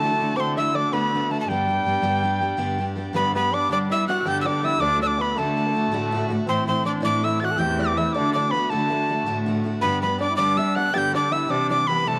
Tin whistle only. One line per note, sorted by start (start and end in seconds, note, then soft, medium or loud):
0.00 0.38 A5 loud
0.36 0.56 C6 loud
0.36 0.41 D6 medium
0.57 0.77 E6 medium
0.75 0.95 D6 medium
0.93 1.33 B5 loud
1.31 1.40 A5 medium
1.41 1.50 A5 medium
1.49 2.84 G5 medium
3.16 3.34 B5 loud
3.36 3.55 B5 loud
3.54 3.71 D6 medium
3.72 3.78 D6 loud
3.92 4.07 E6 medium
4.08 4.29 F#6 loud
4.28 4.41 G6 loud
4.41 4.48 E6 medium
4.46 4.66 D6 loud
4.65 4.82 E6 loud
4.80 5.01 D6 loud
5.02 5.08 E6 medium
5.07 5.23 D6 loud
5.21 5.40 B5 loud
5.38 6.31 A5 loud
6.49 6.67 C6 loud
6.68 6.85 C6 medium
6.86 6.92 D6 loud
7.05 7.26 D6 loud
7.24 7.42 E6 medium
7.40 7.46 A6 medium
7.45 7.60 F#6 loud
7.59 7.82 G6 loud
7.81 7.99 D6 medium
7.97 8.14 E6 medium
8.13 8.33 D6 medium
8.33 8.53 D6 medium
8.51 8.71 B5 loud
8.70 9.38 A5 loud
9.81 10.01 B5 medium
10.02 10.19 B5 medium
10.21 10.36 D6 loud
10.36 10.59 D6 loud
10.57 10.77 E6 medium
10.75 10.96 F#6 loud
10.94 11.15 G6 loud
10.94 10.99 A6 loud
11.15 11.34 D6 loud
11.32 11.52 E6 medium
11.50 11.70 D6 medium
11.70 11.89 D6 loud
11.87 12.09 B5 loud
12.08 12.19 A5 loud